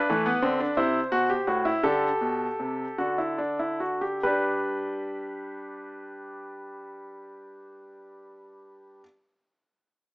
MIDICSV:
0, 0, Header, 1, 2, 480
1, 0, Start_track
1, 0, Key_signature, 1, "major"
1, 0, Tempo, 700117
1, 1262, Time_signature, 6, 3, 24, 8
1, 1262, Tempo, 773196
1, 2222, Tempo, 870827
1, 5947, End_track
2, 0, Start_track
2, 0, Title_t, "Grand piano"
2, 0, Program_c, 0, 0
2, 0, Note_on_c, 0, 71, 100
2, 66, Note_on_c, 0, 52, 88
2, 66, Note_on_c, 0, 57, 89
2, 176, Note_off_c, 0, 57, 0
2, 177, Note_on_c, 0, 59, 96
2, 208, Note_off_c, 0, 52, 0
2, 290, Note_off_c, 0, 59, 0
2, 291, Note_on_c, 0, 50, 88
2, 291, Note_on_c, 0, 60, 93
2, 406, Note_off_c, 0, 60, 0
2, 413, Note_on_c, 0, 62, 90
2, 437, Note_off_c, 0, 50, 0
2, 510, Note_off_c, 0, 71, 0
2, 526, Note_off_c, 0, 62, 0
2, 528, Note_on_c, 0, 64, 92
2, 529, Note_on_c, 0, 48, 90
2, 529, Note_on_c, 0, 72, 84
2, 677, Note_off_c, 0, 48, 0
2, 677, Note_off_c, 0, 64, 0
2, 767, Note_on_c, 0, 47, 81
2, 767, Note_on_c, 0, 66, 97
2, 885, Note_off_c, 0, 66, 0
2, 889, Note_on_c, 0, 67, 91
2, 919, Note_off_c, 0, 47, 0
2, 1008, Note_off_c, 0, 67, 0
2, 1009, Note_on_c, 0, 66, 85
2, 1011, Note_on_c, 0, 45, 75
2, 1131, Note_off_c, 0, 66, 0
2, 1132, Note_on_c, 0, 64, 90
2, 1166, Note_off_c, 0, 45, 0
2, 1240, Note_off_c, 0, 72, 0
2, 1256, Note_off_c, 0, 64, 0
2, 1257, Note_on_c, 0, 50, 93
2, 1258, Note_on_c, 0, 67, 88
2, 1259, Note_on_c, 0, 69, 95
2, 1402, Note_off_c, 0, 50, 0
2, 1492, Note_on_c, 0, 47, 82
2, 1639, Note_off_c, 0, 47, 0
2, 1731, Note_on_c, 0, 48, 72
2, 1881, Note_off_c, 0, 48, 0
2, 1950, Note_off_c, 0, 67, 0
2, 1972, Note_on_c, 0, 50, 74
2, 1972, Note_on_c, 0, 66, 77
2, 2092, Note_off_c, 0, 66, 0
2, 2094, Note_on_c, 0, 64, 75
2, 2218, Note_off_c, 0, 64, 0
2, 2219, Note_on_c, 0, 62, 74
2, 2331, Note_off_c, 0, 62, 0
2, 2336, Note_on_c, 0, 64, 73
2, 2449, Note_off_c, 0, 64, 0
2, 2451, Note_on_c, 0, 66, 67
2, 2566, Note_off_c, 0, 66, 0
2, 2567, Note_on_c, 0, 67, 79
2, 2666, Note_off_c, 0, 69, 0
2, 2668, Note_off_c, 0, 50, 0
2, 2680, Note_off_c, 0, 67, 0
2, 2688, Note_on_c, 0, 55, 79
2, 2688, Note_on_c, 0, 67, 82
2, 2689, Note_on_c, 0, 71, 85
2, 2706, Note_on_c, 0, 62, 75
2, 5319, Note_off_c, 0, 55, 0
2, 5319, Note_off_c, 0, 67, 0
2, 5319, Note_off_c, 0, 71, 0
2, 5336, Note_off_c, 0, 62, 0
2, 5947, End_track
0, 0, End_of_file